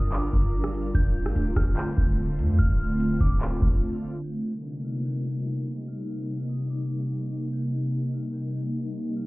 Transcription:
Already playing: G1 G3 D4 F4 A#4 D#6
0.12 D6, clap, closed hi-hat
0.33 G1, kick
0.64 cross-stick
0.74 closed hi-hat
0.95 D1 D3 A3 C4 G6, kick, closed hi-hat
1.26 A1, cross-stick
1.36 D1, closed hi-hat
1.56 D1 F6, kick, cross-stick, closed hi-hat
1.77 G6, clap, closed hi-hat
1.98 D1, kick
2.39 F2, closed hi-hat
2.59 D1 F6, kick, closed hi-hat
3.00 closed hi-hat
3.21 D1 D6, kick, closed hi-hat
3.41 clap, closed hi-hat
3.62 D1, kick
4.23 C3 G3 A#3 D#4
4.84 F6
5.06 G6
5.88 F6
6.49 D#6
6.70 D6
7.53 G6
8.14 F6
8.33 G6
9.17 F6

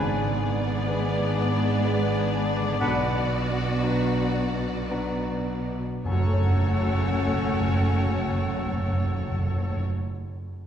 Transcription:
Already playing: G#1 G#2 B3 D4 G#4 B4 D5 G#5
0.16 D3
0.39 G#3
0.62 D4
0.86 G#3 D4 B4
1.10 G#4
1.34 D5
1.59 G#4
1.83 G#3 D4 B4 D5
2.07 B4
2.32 D4
2.57 D3
2.80 B1 B2 D4 F#4 B4 F#5
3.06 B3
3.32 F#3
3.57 D4
3.82 F#3 D4 B4
4.09 F#4
4.35 D5
4.63 F#4
4.90 F#3 D4 B4 D5
5.18 B4
5.48 D4
5.77 B3
6.05 F#1 F#2 A3 C#4 F#4 A4 C#5 F#5
6.12 F#2 F#3
6.18 F#2 C#4
6.24 F#2 A4
6.31 F#2 C#5
6.37 F#2
6.43 F#2
6.50 F#2
6.56 F#2
6.62 F#2
6.69 F#2
6.75 F#2
6.82 F#2
6.88 F#2
6.94 F#2
7.01 F#2
7.08 F#2
7.14 F#2
7.21 F#2
7.27 F#2
7.33 F#2
7.40 F#2
7.47 F#2
7.54 F#2
7.60 F#2
7.66 F#2
7.73 F#2
7.79 F#2
7.85 F#2
7.93 F#2
7.99 F#2
8.06 F#2
8.13 F#2
8.19 F#2
8.25 F#2
8.32 F#2
8.39 F#2
8.45 F#2
8.52 F#2
8.59 F#2
8.66 F#2
8.73 F#2
8.79 F#2
8.85 F#2
8.92 F#2
8.99 F#2
9.05 F#2
9.11 F#2
9.18 F#2
9.25 F#2
9.31 F#2
9.37 F#2
9.43 F#2
9.50 F#2
9.57 F#2
9.63 F#2
9.70 F#2
9.77 F#2

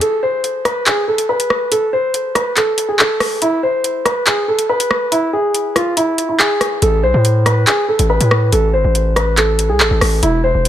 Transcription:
0.01 A4, closed hi-hat
0.23 C5
0.44 closed hi-hat
0.65 B4, cross-stick, closed hi-hat
0.86 G#4, clap, closed hi-hat
1.08 A4
1.18 closed hi-hat
1.29 B4
1.40 closed hi-hat
1.50 cross-stick
1.72 A4, closed hi-hat
1.93 C5
2.14 closed hi-hat
2.35 B4, cross-stick, closed hi-hat
2.57 A4, clap, closed hi-hat
2.78 closed hi-hat
2.89 G#4
2.99 A4, clap
3.20 cross-stick, open hi-hat
3.42 E4, closed hi-hat
3.63 C5
3.84 closed hi-hat
4.05 B4, cross-stick, closed hi-hat
4.27 G#4, clap, closed hi-hat
4.48 A4
4.59 closed hi-hat
4.69 B4
4.80 closed hi-hat
4.91 cross-stick
5.12 E4, closed hi-hat
5.33 G#4
5.54 closed hi-hat
5.76 F4, cross-stick, closed hi-hat
5.97 E4, closed hi-hat
6.18 closed hi-hat
6.29 E4
6.40 G#4, clap
6.61 cross-stick, closed hi-hat
6.82 A1 A4, closed hi-hat
7.03 B1 C5
7.14 A2
7.25 closed hi-hat
7.46 B4, cross-stick, closed hi-hat
7.67 G#4, clap, closed hi-hat
7.88 A4
7.99 A1, closed hi-hat
8.10 B4
8.20 A2, closed hi-hat
8.31 cross-stick
8.52 A1 A4, closed hi-hat
8.74 G#1 C5
8.84 A1
8.95 closed hi-hat
9.16 B4, cross-stick, closed hi-hat
9.37 A4, clap, closed hi-hat
9.59 closed hi-hat
9.69 C2 G#4
9.80 A1 A4, clap
9.91 A1
10.01 A1, cross-stick, open hi-hat
10.23 E1 E4, closed hi-hat
10.44 C5
10.55 E1
10.65 closed hi-hat

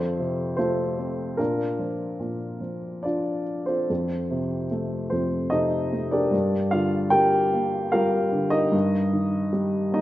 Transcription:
Already playing: F2 F4 A4 C5
0.20 C3
0.57 A3 F4 A4 C5
0.98 C4
1.37 A#2 D4 F4 A#4
1.79 F3
2.20 A#2
2.61 F3
3.03 D4 F4 D5
3.66 C4 F4 A4 C5
3.90 F2
4.31 C3
4.71 A3
5.10 F2 C4 C5
5.50 C3 D#4 A4 D#5
5.92 A3
6.11 D4 G4 A#4 D5
6.31 G2
6.71 D3 F4 F5
7.10 G3 G4 A#4 G5
7.53 A#3
7.92 G3 F4 A#4 F5
8.32 D3
8.50 D#4 A#4 D#5
8.72 G2
9.13 D#3
9.53 G3
9.92 A#3 D#4 D#5

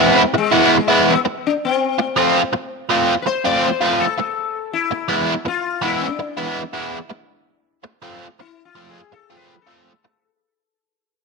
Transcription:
Already playing: E3 C4
0.00 G#3 B3 E4
0.34 G#3, muted overdriven electric guitar stroke
0.52 E3 G#3 B3 E4
0.88 E3 G#3 B3 E4
1.10 B3
1.25 muted overdriven electric guitar stroke
1.47 D4
1.65 C4
1.99 muted overdriven electric guitar stroke
2.16 F3 A3 C4 F4
2.53 muted overdriven electric guitar stroke
2.90 F3 A3 C4 F4
3.22 B4
3.27 C5, muted overdriven electric guitar stroke
3.45 F3 A3 C4 F4 D5
3.64 C5
3.81 F3 A3 C4 F4 B4
4.00 A4
4.18 muted overdriven electric guitar stroke
4.73 E4
4.91 muted overdriven electric guitar stroke
5.08 E3 G#3 B3 E4
5.45 F4, muted overdriven electric guitar stroke
5.82 E3 G#3 B3 E4
6.02 D4
6.19 muted overdriven electric guitar stroke
6.37 E3 G#3 B3 E4
6.73 E3 G#3 B3 E4
7.10 muted overdriven electric guitar stroke
7.84 muted overdriven electric guitar stroke
8.02 F3 A3 C4 F4
8.40 E4, muted overdriven electric guitar stroke
8.65 F4
8.75 F3 A3 C4 F4
8.82 A4
8.89 G#4
9.12 A4, muted overdriven electric guitar stroke
9.30 F3 A3 C4 F4
9.37 B4
9.62 A4
9.67 F3 A3 C4 F4
10.04 muted overdriven electric guitar stroke

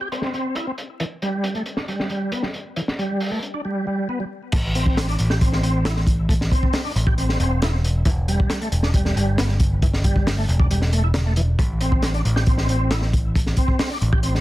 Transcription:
0.01 G4
0.12 C4, closed hi-hat
0.22 snare
0.34 C4, closed hi-hat
0.55 E4, closed hi-hat
0.67 C4
0.78 closed hi-hat
1.00 E3, closed hi-hat
1.22 G3, closed hi-hat
1.44 closed hi-hat
1.55 A3, closed hi-hat
1.66 closed hi-hat
1.77 D4, snare
1.88 G3, closed hi-hat
2.00 snare
2.10 G3, closed hi-hat
2.32 B3, closed hi-hat
2.43 G3, snare
2.54 closed hi-hat
2.76 E3, closed hi-hat
2.88 snare
2.99 G3, closed hi-hat
3.20 open hi-hat
3.32 A3
3.42 closed hi-hat
3.54 D4
3.65 G3
3.87 G3
4.09 B3
4.20 G3
4.52 A1 A3, kick, closed hi-hat, crash
4.75 C4, closed hi-hat
4.86 kick
4.97 snare, closed hi-hat
5.08 D4, closed hi-hat
5.18 A1, closed hi-hat
5.30 G4, snare
5.41 C4, kick, closed hi-hat
5.53 snare
5.63 C4, closed hi-hat
5.85 E4, snare, closed hi-hat
5.96 C4, snare
6.07 kick, closed hi-hat
6.29 A3, kick, closed hi-hat
6.41 snare
6.51 C4, kick, closed hi-hat
6.63 kick
6.73 snare, open hi-hat
6.85 D4
6.96 A1, closed hi-hat
7.07 G4, kick
7.18 C4, closed hi-hat
7.29 snare
7.40 E1 C4, closed hi-hat
7.62 E4, snare, closed hi-hat
7.73 C4
7.84 closed hi-hat
8.05 E1 E3, kick, closed hi-hat
8.28 G3, closed hi-hat
8.40 kick
8.50 snare, closed hi-hat
8.61 A3, closed hi-hat
8.72 E1, closed hi-hat
8.83 D4, snare
8.94 G3, kick, closed hi-hat
9.05 snare
9.16 G1 G3, closed hi-hat
9.38 B3, snare, closed hi-hat
9.48 G3, snare
9.60 kick, closed hi-hat
9.82 E3, kick, closed hi-hat
9.93 snare
10.04 G3, kick, closed hi-hat
10.16 kick
10.27 snare, open hi-hat
10.38 A3
10.49 E1, closed hi-hat
10.60 D4, kick
10.71 G3, closed hi-hat
10.82 snare
10.93 A3, closed hi-hat
11.04 E4
11.14 D3, snare, closed hi-hat
11.26 A3
11.36 E3, closed hi-hat
11.59 A1 A3, kick, closed hi-hat
11.81 C4, closed hi-hat
11.92 kick
12.02 snare, closed hi-hat
12.14 D4, closed hi-hat
12.25 A1, closed hi-hat
12.36 G4, snare
12.46 C4, kick, closed hi-hat
12.58 snare
12.69 C4, closed hi-hat
12.91 E4, snare, closed hi-hat
13.02 C4, snare
13.13 kick, closed hi-hat
13.35 A3, kick, closed hi-hat
13.46 snare
13.57 C4, kick, closed hi-hat
13.68 kick
13.79 snare, open hi-hat
13.91 D4
14.01 A1, closed hi-hat
14.13 G4, kick
14.23 C4, closed hi-hat
14.35 snare

